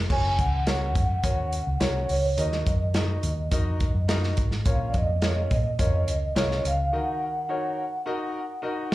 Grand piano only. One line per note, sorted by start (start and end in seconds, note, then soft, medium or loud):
0.10 0.43 C#4 medium
0.10 0.43 F#4 medium
0.10 0.43 A#4 medium
0.10 0.43 C#5 medium
0.66 1.00 C#4 medium
0.66 1.00 F#4 medium
0.66 1.00 A#4 medium
0.66 1.00 C#5 medium
1.23 1.57 C#4 medium
1.23 1.57 F#4 medium
1.23 1.57 A#4 medium
1.23 1.57 C#5 medium
1.80 2.13 C#4 medium
1.80 2.14 F#4 medium
1.80 2.14 A#4 medium
1.80 2.14 C#5 medium
2.37 3.19 D#3 medium
2.37 2.70 D#4 medium
2.37 2.71 F#4 medium
2.37 2.71 A#4 medium
2.37 2.71 D#5 medium
2.95 3.28 D#4 medium
2.95 3.28 F#4 medium
2.95 3.28 A#4 medium
2.95 3.28 D#5 medium
3.51 3.84 D#4 medium
3.51 3.85 F#4 medium
3.51 3.85 A#4 medium
3.51 3.85 D#5 loud
4.08 4.41 D#4 medium
4.08 4.41 F#4 medium
4.08 4.41 A#4 medium
4.08 4.42 D#5 medium
4.66 5.47 A#2 medium
4.66 4.98 C#4 medium
4.66 4.99 F4 medium
4.66 4.99 A#4 medium
4.66 4.99 C#5 medium
5.22 5.55 C#4 medium
5.22 5.55 F4 medium
5.22 5.55 A#4 medium
5.22 5.56 C#5 medium
5.79 6.12 C#4 medium
5.79 6.12 F4 medium
5.79 6.12 A#4 medium
5.79 6.12 C#5 medium
6.35 6.68 C#4 medium
6.35 6.69 F4 medium
6.35 6.69 A#4 medium
6.35 6.69 C#5 medium
6.92 7.74 D#3 medium
6.92 7.25 D#4 medium
6.92 7.25 F#4 medium
6.92 7.26 A#4 medium
6.92 7.26 D#5 medium
7.49 7.82 D#4 medium
7.49 7.82 F#4 medium
7.49 7.82 A#4 medium
7.49 7.82 C#5 medium
8.06 8.39 D#4 medium
8.06 8.39 F#4 medium
8.06 8.39 A#4 medium
8.06 8.39 D#5 loud
8.62 8.95 D#4 medium
8.62 8.95 F#4 medium
8.62 8.95 A#4 medium
8.62 8.95 D#5 medium